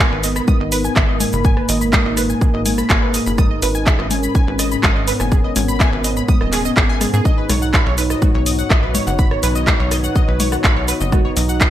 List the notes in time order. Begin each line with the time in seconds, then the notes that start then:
Already playing: G#2 G#3 B3 D#4 A#4
0.00 G#5
0.12 G#1 B4
0.24 B3 D#5, open hi-hat, shaker
0.36 B5, cross-stick, shaker
0.48 D#6, kick, low conga, shaker
0.60 G#1 D#5
0.72 B4, open hi-hat, shaker
0.84 G#5, shaker
0.96 G#1 G#4, kick, cross-stick, clap, shaker
1.09 D#5
1.20 A#3 G#5, open hi-hat, low conga, shaker
1.33 F#1 B5, shaker
1.45 G#5, kick, shaker
1.57 B4, cross-stick
1.69 G#1 D#5, open hi-hat, shaker
1.81 B5, shaker
1.93 D#6, kick, clap, low conga, shaker
2.05 G#1 D#5
2.17 B4, cross-stick, open hi-hat, shaker
2.30 G#5, shaker
2.41 G#4, kick, shaker
2.54 G#1 D#5
2.66 G#5, open hi-hat, low conga, shaker
2.78 B5, cross-stick, shaker
2.90 G#1 G#5, kick, clap, shaker
3.02 B4
3.14 D#5, open hi-hat, shaker
3.26 F#1 B5, shaker
3.38 C#4 D#4 D#6, kick, cross-stick, low conga, shaker
3.51 D#5
3.62 G#1 B4, open hi-hat, shaker
3.75 G#5, shaker
3.87 G#4, kick, clap, shaker
3.99 G#1 D#5, cross-stick
4.11 C#4 G#5, open hi-hat, low conga, shaker
4.23 B5, shaker
4.35 G#5, kick, shaker
4.47 G#1 B4
4.59 D#5, cross-stick, open hi-hat, shaker
4.71 B5, shaker
4.83 G#1 D#6, kick, clap, low conga, shaker
4.96 D#5
5.08 B3 B4, open hi-hat, shaker
5.20 F#1 G#5, cross-stick, shaker
5.32 G#4, kick, shaker
5.44 D#5
5.56 G#1 G#5, open hi-hat, low conga, shaker
5.68 B5, shaker
5.80 G#5, kick, cross-stick, clap, shaker
5.92 G#1 B4
6.04 D#5, open hi-hat, shaker
6.17 B5, shaker
6.28 D#6, kick, low conga, shaker
6.41 D#1 D#5, cross-stick
6.53 G#4, clap, open hi-hat, shaker
6.65 D#5, shaker
6.77 G#1 G#4, kick, clap, shaker
6.89 G#5
7.01 G#4, cross-stick, open hi-hat, low conga, shaker
7.13 G#2 G#4, shaker
7.25 B3 D#4 F#4 C#5 D#5, kick, shaker
7.38 B4
7.50 B1 C#5, cross-stick, open hi-hat, low conga, shaker
7.62 F#5, shaker
7.74 B5, kick, clap, shaker
7.86 B1 C#5
7.98 D#4 B4, open hi-hat, shaker
8.10 D#5, cross-stick, shaker
8.22 F#4, kick, low conga, shaker
8.34 B1 C#5
8.46 D#5, open hi-hat, shaker
8.59 F#5, shaker
8.70 B1 D#5, kick, cross-stick, clap, shaker
8.83 B4
8.95 D#4 C#5, open hi-hat, low conga, shaker
9.07 F#1 F#5, shaker
9.19 B5, kick, shaker
9.31 C#5, cross-stick
9.43 B1 B4, open hi-hat, shaker
9.55 D#5, shaker
9.67 F#4, kick, clap, low conga, shaker
9.80 B1 C#5
9.91 D#5, cross-stick, open hi-hat, shaker
10.04 F#5, shaker
10.16 D#5, kick, shaker
10.28 B1 B4
10.40 C#5, open hi-hat, low conga, shaker
10.52 F#5, cross-stick, shaker
10.64 B1 B5, kick, clap, shaker
10.76 C#5
10.88 B4, open hi-hat, shaker
11.01 F#1 D#5, shaker
11.12 D#4 F#4 D#5, kick, cross-stick, low conga, shaker
11.25 C#5
11.37 B1 D#5, open hi-hat, shaker
11.49 F#5, shaker
11.61 D#5, kick, clap, shaker